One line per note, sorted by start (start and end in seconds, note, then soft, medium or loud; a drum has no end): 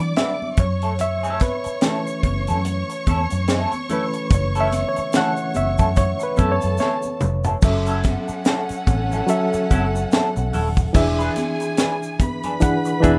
0.00 0.13 E3 medium
0.00 0.60 F#3 medium
0.00 0.60 G3 soft
0.00 0.60 D4 medium
0.00 0.54 D5 medium
0.00 0.54 D6 medium
0.00 muted clean electric guitar stroke soft
0.16 0.31 G3 medium
0.16 0.31 D4 medium
0.16 0.31 F#4 medium
0.16 0.31 B4 medium
0.16 0.60 E5 medium
0.16 snare loud
0.16 closed hi-hat medium
0.16 muted conga soft
0.16 high conga medium
0.42 high conga medium
0.57 1.43 F#2 medium
0.57 6.34 C#5 medium
0.57 1.02 C#5 medium
0.57 6.34 C#6 medium
0.57 muted clean electric guitar stroke soft
0.57 kick loud
0.57 closed hi-hat medium
0.57 low conga medium
0.82 0.92 A3 medium
0.82 0.92 C#4 medium
0.82 0.92 E4 medium
0.82 0.92 A4 medium
0.82 closed hi-hat soft
0.99 1.43 E5 loud
0.99 muted clean electric guitar stroke soft
0.99 closed hi-hat medium
0.99 muted conga soft
0.99 low conga medium
0.99 shaker medium
1.23 1.39 A3 medium
1.23 1.40 C#4 medium
1.23 1.40 E4 medium
1.23 1.40 A4 medium
1.23 shaker soft
1.40 3.44 B4 medium
1.40 muted clean electric guitar stroke soft
1.40 kick medium
1.40 snare soft
1.40 closed hi-hat medium
1.40 high conga medium
1.40 shaker medium
1.64 muted clean electric guitar stroke soft
1.64 muted fingered electric bass stroke soft
1.64 closed hi-hat soft
1.64 shaker medium
1.81 3.88 E3 medium
1.81 1.96 A3 medium
1.81 3.89 A3 soft
1.81 1.96 C#4 medium
1.81 3.90 C#4 medium
1.81 1.96 E4 medium
1.81 1.97 A4 medium
1.81 snare loud
1.81 closed hi-hat medium
1.81 muted conga soft
1.81 shaker medium
2.07 shaker soft
2.23 2.51 F#1 loud
2.23 muted clean electric guitar stroke soft
2.23 kick medium
2.23 closed hi-hat medium
2.23 high conga medium
2.47 2.82 F#2 loud
2.47 2.58 A3 soft
2.47 2.58 C#4 soft
2.47 2.57 E4 soft
2.47 2.57 A4 soft
2.47 closed hi-hat soft
2.47 low conga medium
2.47 shaker soft
2.65 muted clean electric guitar stroke soft
2.65 closed hi-hat medium
2.65 muted conga soft
2.65 shaker medium
2.89 muted clean electric guitar stroke soft
2.89 closed hi-hat soft
2.89 shaker medium
3.06 3.26 E2 medium
3.06 3.21 A3 medium
3.06 3.21 C#4 medium
3.06 3.21 E4 medium
3.06 3.22 A4 medium
3.06 kick medium
3.06 closed hi-hat medium
3.06 high conga medium
3.06 shaker soft
3.30 3.65 F#2 medium
3.30 muted clean electric guitar stroke soft
3.30 closed hi-hat medium
3.30 shaker soft
3.48 3.71 A3 medium
3.48 3.72 C#4 medium
3.48 3.72 E4 medium
3.48 3.72 A4 medium
3.48 snare loud
3.48 closed hi-hat medium
3.48 muted conga soft
3.48 high conga medium
3.48 shaker medium
3.72 muted clean electric guitar stroke soft
3.72 closed hi-hat soft
3.72 high conga medium
3.72 shaker medium
3.89 5.10 E3 medium
3.89 4.02 A3 medium
3.89 5.10 A3 medium
3.89 4.02 C#4 medium
3.89 5.11 C#4 medium
3.89 4.03 E4 medium
3.89 4.03 A4 medium
3.89 4.11 B4 medium
3.89 closed hi-hat medium
3.89 muted conga soft
3.89 low conga medium
3.89 shaker soft
4.13 muted clean electric guitar stroke soft
4.13 closed hi-hat soft
4.13 shaker soft
4.30 4.83 F#1 loud
4.30 muted clean electric guitar stroke soft
4.30 kick loud
4.30 closed hi-hat medium
4.30 muted conga soft
4.30 low conga medium
4.30 shaker medium
4.34 4.61 C#5 medium
4.55 4.68 A3 medium
4.55 4.67 C#4 medium
4.55 4.67 E4 medium
4.55 4.67 A4 medium
4.55 closed hi-hat soft
4.55 shaker soft
4.60 4.88 E5 loud
4.71 muted clean electric guitar stroke soft
4.71 snare soft
4.71 closed hi-hat medium
4.71 high conga medium
4.71 shaker soft
4.89 5.16 C#5 medium
4.96 muted clean electric guitar stroke soft
4.96 muted fingered electric bass stroke soft
4.96 closed hi-hat soft
4.96 shaker medium
5.13 5.52 E3 medium
5.13 5.28 A3 medium
5.13 5.52 A3 soft
5.13 5.28 C#4 medium
5.13 5.52 C#4 medium
5.13 5.28 E4 medium
5.13 5.28 A4 medium
5.13 snare loud
5.13 closed hi-hat loud
5.13 shaker medium
5.17 5.58 F#5 loud
5.37 closed hi-hat soft
5.37 shaker soft
5.54 5.75 F#1 medium
5.54 5.95 E5 medium
5.54 muted clean electric guitar stroke soft
5.54 closed hi-hat medium
5.54 muted conga soft
5.54 high conga medium
5.54 shaker medium
5.78 6.13 F#2 medium
5.78 5.89 A3 medium
5.78 5.89 C#4 soft
5.78 5.88 E4 medium
5.78 5.88 A4 medium
5.78 kick medium
5.78 closed hi-hat medium
5.78 low conga medium
5.78 shaker soft
5.96 6.23 C#5 medium
5.96 kick loud
5.96 closed hi-hat medium
5.96 shaker medium
6.20 6.50 B4 medium
6.20 muted clean electric guitar stroke soft
6.20 closed hi-hat soft
6.20 shaker medium
6.37 6.58 F#2 medium
6.37 6.52 A3 medium
6.37 6.52 C#4 medium
6.37 6.52 E4 medium
6.37 7.19 A4 medium
6.37 6.52 A4 medium
6.37 7.19 A5 medium
6.37 kick medium
6.37 closed hi-hat medium
6.37 muted conga soft
6.37 high conga medium
6.37 shaker soft
6.52 6.79 C#5 medium
6.61 6.77 F#2 medium
6.61 muted clean electric guitar stroke soft
6.61 closed hi-hat soft
6.61 shaker soft
6.78 6.93 A3 medium
6.78 6.93 C#4 medium
6.78 6.93 E4 medium
6.78 6.94 A4 medium
6.78 7.59 C#5 medium
6.78 snare medium
6.78 muted conga soft
6.78 high conga medium
6.78 shaker medium
7.02 high conga medium
7.02 shaker medium
7.21 7.55 F1 medium
7.21 muted clean electric guitar stroke soft
7.21 mid tom medium
7.21 muted conga soft
7.21 low conga medium
7.21 shaker medium
7.44 7.55 A3 soft
7.44 7.55 C#4 soft
7.44 7.54 E4 soft
7.44 7.54 A4 medium
7.44 floor tom medium
7.44 shaker medium
7.62 8.15 F#1 loud
7.62 8.83 F#3 medium
7.62 10.91 C#4 medium
7.62 8.83 C#4 medium
7.62 10.91 A4 medium
7.62 8.84 A4 medium
7.62 8.84 E5 medium
7.62 10.91 F#5 loud
7.62 muted clean electric guitar stroke soft
7.62 kick loud
7.62 crash loud
7.62 muted conga soft
7.62 low conga medium
7.62 shaker medium
7.86 7.99 F#3 medium
7.86 7.99 C#4 medium
7.86 7.99 E4 medium
7.86 7.98 A4 medium
7.86 shaker soft
8.03 muted clean electric guitar stroke soft
8.03 kick medium
8.03 snare soft
8.03 closed hi-hat medium
8.03 muted conga soft
8.03 high conga medium
8.28 muted clean electric guitar stroke medium
8.28 muted fingered electric bass stroke soft
8.28 shaker medium
8.45 8.59 F#3 medium
8.45 8.60 C#4 medium
8.45 8.60 E4 medium
8.45 8.60 A4 medium
8.45 snare loud
8.45 closed hi-hat medium
8.45 muted conga soft
8.45 shaker medium
8.69 muted fingered electric bass stroke soft
8.69 closed hi-hat soft
8.69 shaker soft
8.87 9.20 A1 medium
8.87 muted clean electric guitar stroke soft
8.87 kick medium
8.87 closed hi-hat medium
8.87 high conga medium
8.87 shaker medium
9.10 9.22 F#3 medium
9.10 9.21 C#4 medium
9.10 9.21 E4 medium
9.10 9.21 A4 medium
9.10 low conga medium
9.10 shaker medium
9.27 10.48 F#3 medium
9.27 10.49 C#4 medium
9.27 10.50 A4 medium
9.27 10.50 E5 medium
9.27 closed hi-hat medium
9.27 shaker medium
9.53 muted clean electric guitar stroke soft
9.53 muted fingered electric bass stroke soft
9.53 closed hi-hat medium
9.53 shaker soft
9.70 10.04 F#1 medium
9.70 9.84 F#3 medium
9.70 9.84 C#4 medium
9.70 9.85 E4 medium
9.70 9.85 A4 medium
9.70 kick loud
9.70 closed hi-hat medium
9.70 muted conga soft
9.70 high conga medium
9.70 shaker soft
9.95 muted clean electric guitar stroke soft
9.95 shaker medium
10.12 10.26 F#3 medium
10.12 10.26 C#4 medium
10.12 10.26 E4 medium
10.12 10.26 A4 medium
10.12 snare loud
10.12 closed hi-hat medium
10.12 high conga medium
10.12 shaker medium
10.36 10.50 B1 medium
10.36 muted clean electric guitar stroke soft
10.36 high conga medium
10.36 shaker soft
10.53 10.87 D#1 medium
10.53 10.66 F#3 medium
10.53 10.66 C#4 medium
10.53 10.66 E4 medium
10.53 10.66 A4 medium
10.53 open hi-hat medium
10.53 muted conga soft
10.53 low conga medium
10.53 shaker medium
10.76 muted clean electric guitar stroke soft
10.76 kick medium
10.76 shaker soft
10.93 11.28 E1 loud
10.93 12.15 E3 medium
10.93 12.15 D4 medium
10.93 12.16 G#4 medium
10.93 12.17 G#4 medium
10.93 12.16 E5 medium
10.93 12.18 G#5 medium
10.93 muted clean electric guitar stroke soft
10.93 kick loud
10.93 crash loud
10.93 muted conga soft
10.93 low conga medium
10.93 shaker medium
11.19 11.31 B3 medium
11.19 11.31 D4 medium
11.19 11.31 G#4 medium
11.19 11.31 B4 medium
11.19 shaker medium
11.36 snare soft
11.36 closed hi-hat medium
11.36 muted conga soft
11.36 high conga medium
11.36 shaker medium
11.60 muted clean electric guitar stroke soft
11.60 closed hi-hat soft
11.60 shaker medium
11.77 11.92 B3 medium
11.77 11.92 D4 medium
11.77 11.93 G#4 medium
11.77 11.93 B4 medium
11.77 snare loud
11.77 closed hi-hat loud
11.77 muted conga soft
11.77 shaker medium
12.03 shaker soft
12.20 13.19 B4 medium
12.20 13.19 B5 medium
12.20 muted clean electric guitar stroke soft
12.20 kick medium
12.20 closed hi-hat medium
12.20 muted conga soft
12.20 high conga medium
12.20 shaker medium
12.43 12.54 B3 medium
12.43 12.53 D4 medium
12.43 12.53 G#4 medium
12.43 12.53 B4 medium
12.43 closed hi-hat medium
12.43 low conga medium
12.43 shaker soft
12.60 12.92 E3 medium
12.60 12.93 D4 medium
12.60 12.93 G#4 medium
12.60 12.94 F#5 medium
12.60 kick loud
12.60 closed hi-hat medium
12.60 shaker medium
12.85 muted clean electric guitar stroke soft
12.85 closed hi-hat soft
12.85 shaker medium
13.00 13.19 E1 medium
13.00 13.19 E3 medium
13.00 13.16 B3 medium
13.00 13.19 D4 medium
13.00 13.16 D4 medium
13.00 13.19 G#4 medium
13.00 13.17 G#4 medium
13.00 13.17 B4 medium
13.00 13.19 E5 medium
13.00 kick medium
13.00 closed hi-hat medium
13.00 muted conga soft
13.00 high conga medium
13.00 shaker soft